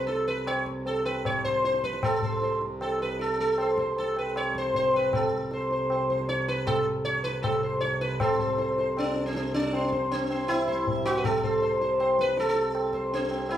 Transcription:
Already playing: harmonium C2 C3
0.07 sitar A4, tabla te
0.28 sitar B4, tabla te
0.47 sitar C#5, tabla na
0.66 tabla ke
0.86 sitar A4, tabla tin
1.05 sitar B4, tabla na
1.25 sitar C#5, tabla na, tabla ge
1.45 sitar C5, tabla ge
1.64 sitar C5, tabla te
1.74 tabla te
1.84 sitar B4, tabla ke
1.93 tabla te
2.03 harmonium C2 C3, sitar A4, tabla na, tabla ge
2.22 sitar C5, tabla ge
2.42 sitar C5, tabla te
2.61 tabla te
2.81 sitar A4, tabla na
3.00 sitar B4, tabla te
3.19 sitar A4, tabla te
3.38 sitar A4, tabla te
3.58 sitar C5, tabla na
3.78 sitar C5, tabla ke
3.97 sitar A4, tabla tin
4.17 sitar B4, tabla na
4.36 sitar C#5, tabla na
4.55 sitar C5, tabla ke
4.74 sitar C5, tabla tin, tabla ge
4.94 sitar B4, tabla na
5.13 sitar A4, tabla na, tabla ge
5.32 tabla ge
5.51 sitar C5, tabla te
5.71 sitar C5, tabla te
5.90 sitar C5, tabla na
6.10 sitar C5, tabla ke
6.19 tabla te
6.29 sitar C#5, tabla te
6.48 sitar B4, tabla te
6.67 sitar A4, tabla na, tabla ge
7.05 sitar C#5, tabla te
7.24 sitar B4, tabla te
7.43 sitar A4, tabla na, tabla ge
7.63 sitar C5
7.81 sitar C#5, tabla te
8.01 sitar B4, tabla te
8.20 harmonium C2 C3, sitar A4 C5, tabla na, tabla ge
8.39 sitar C5, tabla ge
8.58 sitar C5, tabla te
8.78 sitar C5, tabla te
8.97 sitar C#4, tabla na
9.16 tabla te
9.26 sitar C4
9.35 sitar C4, tabla te
9.54 sitar C#4, tabla te
9.73 sitar C5, tabla na
9.92 sitar C5, tabla ke
10.11 sitar C4, tabla tin
10.30 sitar C5, tabla na
10.48 sitar E4, tabla na
10.68 sitar C5, tabla ke
10.87 tabla tin, tabla ge
11.06 sitar F#4, tabla na
11.18 sitar B4
11.24 sitar A4, tabla na, tabla ge
11.43 sitar C5, tabla ge
11.62 sitar C5, tabla te
11.81 sitar C5, tabla te
12.00 sitar C5, tabla na
12.19 sitar B4, tabla ke
12.28 tabla te
12.37 sitar A4, tabla te
12.49 sitar A4
12.56 tabla te
12.75 tabla na
12.93 sitar C5, tabla ke
13.12 sitar C4, tabla tin
13.31 tabla na
13.49 sitar E4, tabla na

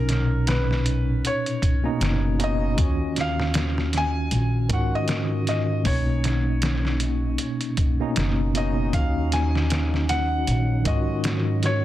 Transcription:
Already playing: upright bass B1, tine electric piano A#2 B2 C#4 D#4, felt piano A#4
0.09 snare, closed hi-hat
0.47 felt piano B4, snare, closed hi-hat
0.71 snare
0.86 closed hi-hat
1.25 felt piano C#5, closed hi-hat
1.46 closed hi-hat
1.62 kick, closed hi-hat
1.83 tine electric piano B2 A#3 C#4 D#4
2.01 upright bass F#1, snare, closed hi-hat
2.39 tine electric piano B2 A#3 C#4 D#4, closed hi-hat
2.44 felt piano D#5
2.77 upright bass D#2, tine electric piano D#3 C#4 F4, kick, closed hi-hat
2.81 tine electric piano F#4
3.16 snare, closed hi-hat
3.21 felt piano F5
3.40 snare
3.54 snare, closed hi-hat
3.78 snare
3.93 snare, closed hi-hat
3.97 felt piano G#5
4.31 upright bass A#1, closed hi-hat
4.69 upright bass G#2, tine electric piano D#3 C#4 F4, kick, closed hi-hat
4.73 tine electric piano F#4, felt piano F#5
4.95 felt piano D#5
5.08 snare, closed hi-hat
5.47 felt piano D#5, snare, closed hi-hat
5.83 upright bass B1, tine electric piano B2 A#3 C#4, felt piano C#5, kick, open hi-hat
5.87 tine electric piano D#4
6.24 snare, closed hi-hat
6.62 snare, closed hi-hat
6.85 snare
7.00 closed hi-hat
7.38 closed hi-hat
7.61 closed hi-hat
7.77 kick, closed hi-hat
8.00 tine electric piano B2 A#3 C#4 D#4
8.16 upright bass F#1, snare, closed hi-hat
8.54 tine electric piano B2 A#3 C#4 D#4, felt piano D#5, closed hi-hat
8.92 upright bass D#2, tine electric piano D#3 C#4 D#4 F#4, synth texture F#3, felt piano F5, kick, closed hi-hat
9.32 felt piano G#5, snare, closed hi-hat
9.55 snare
9.70 snare, closed hi-hat
9.94 snare
10.09 felt piano F#5, snare, closed hi-hat
10.47 upright bass A#1, closed hi-hat
10.84 upright bass G#2, tine electric piano D#3 C#4 F4, felt piano D#5, kick, closed hi-hat
10.89 tine electric piano F#4
11.24 snare, closed hi-hat
11.63 felt piano C#5, snare, closed hi-hat

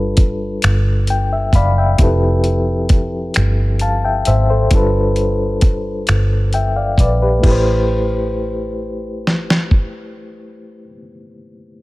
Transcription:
Already playing: fingered electric bass G1, reed electric piano G3 D4 F4 A4 B4
0.17 kick, closed hi-hat
0.62 fingered electric bass G1, finger snap, closed hi-hat
1.07 reed electric piano G5, closed hi-hat
1.33 reed electric piano E5
1.53 fingered electric bass F#1, reed electric piano D5 F5 B5, kick, closed hi-hat
1.78 reed electric piano E5 G5
1.98 fingered electric bass F1, reed electric piano F3 C4 E4 G4, kick, closed hi-hat
2.02 reed electric piano A4 B4
2.44 closed hi-hat
2.89 kick, closed hi-hat
3.34 fingered electric bass G1, finger snap, closed hi-hat
3.79 reed electric piano F5 A5, closed hi-hat
4.05 reed electric piano E5 G5
4.25 fingered electric bass G#1, reed electric piano C5 E5, closed hi-hat
4.50 reed electric piano A4 C5
4.71 fingered electric bass G1, reed electric piano G3 D4 F4, kick, closed hi-hat
4.75 reed electric piano A4 B4
5.16 closed hi-hat
5.61 kick, closed hi-hat
6.07 fingered electric bass G1, finger snap, closed hi-hat
6.53 reed electric piano E5 G5, closed hi-hat
6.76 reed electric piano D5 F5
6.98 fingered electric bass A#1, reed electric piano B4 D5, kick, closed hi-hat
7.22 reed electric piano G4 B4
7.39 reed electric piano A3 E4
7.44 fingered electric bass A1, reed electric piano G4, kick, crash
7.48 reed electric piano B4 C5
9.27 snare
9.50 snare
9.71 kick

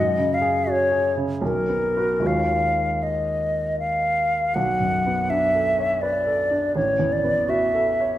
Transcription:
Already playing: grand piano F#2, flute D#5
0.17 grand piano C#3
0.34 flute F5
0.41 grand piano G#4
0.67 grand piano F#4
0.71 flute C#5
0.91 grand piano G#4
1.16 grand piano C#3
1.42 grand piano B1, flute A#4
1.69 grand piano B3
1.97 grand piano F#4 B4
2.20 grand piano D#2 G#3 F4 F#4 C#5
2.27 flute F5
3.03 flute D#5
3.79 flute F5
4.55 grand piano B1, flute F#5
4.80 grand piano F#2
5.06 grand piano B3
5.30 grand piano D4, flute E5
5.55 grand piano A4
5.79 grand piano C#5
6.02 grand piano B4, flute D5
6.27 grand piano A4
6.51 grand piano D4
6.75 grand piano A1, flute C#5
6.99 grand piano E2
7.13 flute D5
7.24 grand piano B3
7.48 grand piano F#4, flute E5
7.74 grand piano A4
8.00 grand piano C#5

